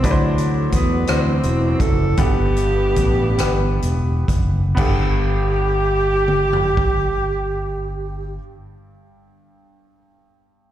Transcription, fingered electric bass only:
\new Staff \with { instrumentName = "Fingered electric bass" } { \clef bass \time 6/8 \key g \major \tempo 4. = 40 d,4 e,8 d,8 e,,8 fis,,8 | g,,4 a,,8 g,,8 e,,8 fis,,8 | g,,2.~ | g,,2. | }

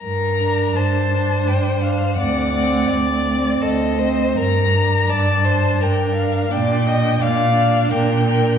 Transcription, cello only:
\new Staff \with { instrumentName = "Cello" } { \clef bass \time 3/4 \key g \minor \tempo 4 = 84 g,4 g,4 g,4 | d,4 d,4 d,4 | g,4 g,4 g,4 | bes,4 bes,4 bes,4 | }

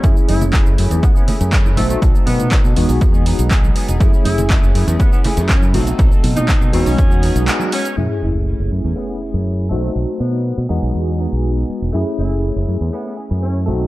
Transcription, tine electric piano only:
\new Staff \with { instrumentName = "Tine electric piano" } { \time 4/4 \key fis \dorian \tempo 4 = 121 <a cis' e' gis'>2.~ <a cis' e' gis'>8 <a dis' fis' c''>8~ | <a dis' fis' c''>4. <gis b dis' fis'>2~ <gis b dis' fis'>8 | <a cis' e' gis'>2.~ <a cis' e' gis'>8 <a c' dis' fis'>8~ | <a c' dis' fis'>4. <gis b dis' fis'>2~ <gis b dis' fis'>8 |
<a cis' e' gis'>2.~ <a cis' e' gis'>8 <a dis' fis' c''>8~ | <a dis' fis' c''>4. <gis b dis' fis'>2~ <gis b dis' fis'>8 | <a cis' e' gis'>2.~ <a cis' e' gis'>8 <a c' dis' fis'>8 | }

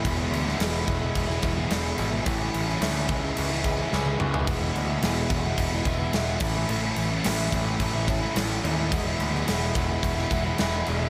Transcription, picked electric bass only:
\new Staff \with { instrumentName = "Picked electric bass" } { \clef bass \time 4/4 \key e \mixolydian \tempo 4 = 108 e,,8 d,8 e,,8 e,,8 e,,8 e,,8 e,,8 gis,,8 | a,,8 a,,8 d,8 cis,8 cis,4 cis,8 cis,8 | e,,8 d,8 e,,8 e,,8 e,,8 e,,8 e,,8 a,,8 | a,,8 a,,8 a,,8 a,,8 a,,4 a,,8 dis,8 |
e,,8 d,8 e,,8 e,,8 e,,8 e,,8 e,,8 e,,8 | }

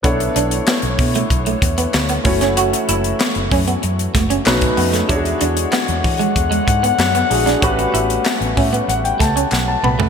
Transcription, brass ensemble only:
\new Staff \with { instrumentName = "Brass ensemble" } { \time 4/4 \key b \minor \tempo 4 = 95 << { <d a cis''>2.~ <d a cis''>8 e8~ | e2. cis4 | <d gis cis''>1 | <g b cis'>1 | } \\ { e'2.~ e'8 fis'8~ | fis'2. dis'4 | fis''1~ | fis''1 | } >> }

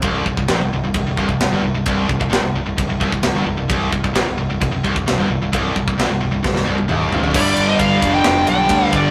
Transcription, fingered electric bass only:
\new Staff \with { instrumentName = "Fingered electric bass" } { \clef bass \time 4/4 \key c \minor \tempo 4 = 131 c,,8 c,,16 c,,16 bes,,16 c,,16 c,,16 c,,16 c,,16 c,,16 c,,16 c,,16 c,,16 g,,16 c,,16 c,,16 | c,,8 c,,16 c,,16 bes,,16 c,,16 c,,16 c,,16 c,,16 c,,16 c,,16 c,,16 c,,16 g,,16 c,,16 c,,16 | c,,8 c,,16 c,,16 bes,,16 c,,16 c,,16 c,,16 c,,16 c,,16 c,,16 c,,16 c,,16 g,,16 c,,16 c,,16 | c,,8 c,,16 c,,16 bes,,16 c,,16 c,,16 c,,16 c,,16 c,,16 c,,16 c,,16 ees,,8 aes,,16 d,,16 |
g,,8 g,,8 g,,8 f,,8 f,,8 b,,8 d,8 g,,8 | }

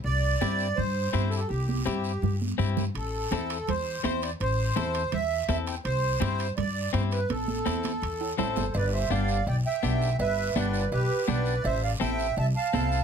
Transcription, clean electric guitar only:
\new Staff \with { instrumentName = "Clean electric guitar" } { \time 4/4 \key a \minor \tempo 4 = 166 r4 <c' e' g'>8 r4. <c' e' g'>8 r8 | r4 <c' e' g'>8 r4. <c' e' g'>8 r8 | r4 <c' e' a'>8 r4. <c' e' c''>8 r8 | r4 <c' e' a'>8 r4. <c' e' a'>8 r8 |
r4 <c' e' g'>8 r4. <c' e' g'>8 r8 | r4 <c' e' a'>8 r4. <c' e' a'>8 r8 | r4 <b d' g'>8 r4. <b d' g'>8 r8 | r4 <b d' g'>8 r4. <b d' g'>8 r8 |
r4 <c' e' a'>8 r4. <c' e' a'>8 r8 | }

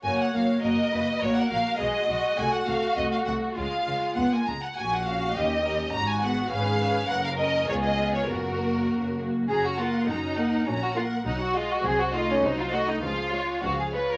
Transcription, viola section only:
\new Staff \with { instrumentName = "Viola section" } { \time 2/4 \key fis \major \tempo 4 = 102 <ais fis'>8 <ais fis'>8 <ais fis'>8 <ais fis'>8 | <ais fis'>8 <ais fis'>8 <gis fis'>8 <gis fis'>8 | <a ges'>8 <a ges'>8 <a ges'>8 <a ges'>8 | <gis gis'>8 <gis gis'>8 b16 ais16 gis8 |
r8 <cis' fis'>8 <cis' g'>8 <cis' g'>8 | r8 <b gis'>8 <cis' b'>8 <cis' b'>8 | r8 <cis' ais'>8 <b eis'>8 <b eis'>8 | r8 <ais fis'>4 <ais fis'>8 |
<cis' fis'>8 <ais ais'>8 <cis' fis'>8 <ais ais'>8 | <cis' fis'>8 <ais ais'>8 <fis fis'>8 <gis gis'>8 | <ges ges'>8 <a ees'>8 <ges ges'>8 <a ees'>8 | <eis gis'>8 <gis eis'>8 <eis gis'>8 <gis eis'>8 | }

